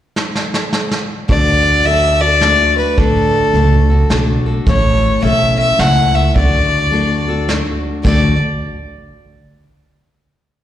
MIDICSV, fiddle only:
0, 0, Header, 1, 2, 480
1, 0, Start_track
1, 0, Key_signature, 2, "major"
1, 0, Tempo, 562852
1, 1098, Time_signature, 3, 2, 24, 8
1, 9073, End_track
2, 0, Start_track
2, 0, Title_t, "Fiddle"
2, 0, Program_c, 0, 110
2, 1099, Note_on_c, 0, 74, 85
2, 1580, Note_on_c, 0, 76, 91
2, 1593, Note_off_c, 0, 74, 0
2, 1881, Note_on_c, 0, 74, 94
2, 1894, Note_off_c, 0, 76, 0
2, 2363, Note_off_c, 0, 74, 0
2, 2367, Note_on_c, 0, 71, 77
2, 2543, Note_on_c, 0, 69, 82
2, 2556, Note_off_c, 0, 71, 0
2, 3502, Note_off_c, 0, 69, 0
2, 3992, Note_on_c, 0, 73, 78
2, 4434, Note_off_c, 0, 73, 0
2, 4465, Note_on_c, 0, 76, 90
2, 4748, Note_off_c, 0, 76, 0
2, 4768, Note_on_c, 0, 76, 91
2, 4944, Note_on_c, 0, 78, 96
2, 4957, Note_off_c, 0, 76, 0
2, 5244, Note_on_c, 0, 76, 84
2, 5257, Note_off_c, 0, 78, 0
2, 5415, Note_off_c, 0, 76, 0
2, 5420, Note_on_c, 0, 74, 78
2, 6347, Note_off_c, 0, 74, 0
2, 6858, Note_on_c, 0, 74, 73
2, 7144, Note_off_c, 0, 74, 0
2, 9073, End_track
0, 0, End_of_file